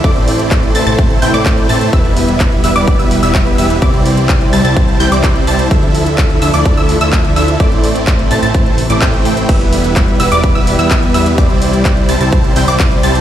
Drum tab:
CC |----------------|----------------|----------------|----------------|
RD |----------------|----------------|----------------|----------------|
HH |xxoxxxoxxxoxxxox|xxoxxxoxxxoxxxox|xxoxxxoxxxoxxxox|xxoxxxoxxxoxxxox|
CP |----x-------x---|----x-------x---|----x-------x---|----x-------x---|
BD |o---o---o---o---|o---o---o---o---|o---o---o---o---|o---o---o---o---|

CC |----------------|x---------------|----------------|
RD |----------------|x-x-x-x-x-x-x-x-|x-x-x-x-x-x-x-x-|
HH |xxoxxxoxxxoxxxox|xxoxxxoxxxoxxxox|xxoxxxoxxxoxxxox|
CP |----x-------x---|----x-------x---|----x-------x---|
BD |o---o---o---o---|o---o---o---o---|o---o---o---o---|